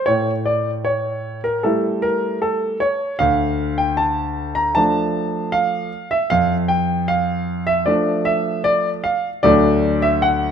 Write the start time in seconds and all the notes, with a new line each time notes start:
0.06 A2 C#5
0.46 D5
0.85 C#5
1.44 A#4
1.63 G3 A3 E4 A4
2.02 A#4
2.42 A4
2.80 C#5
3.19 D2 F5
3.78 G5
3.97 A5
4.55 A#5
4.75 F3 A3 D4 A5
5.52 F5
6.11 E5
6.30 F2 F5
6.68 G5
7.08 F5
7.67 E5
7.86 F3 A3 D4 D5
8.25 E5
8.64 D5
9.04 F5
9.43 D2 F#3 A3 D4 D5
10.02 E5
10.22 F#5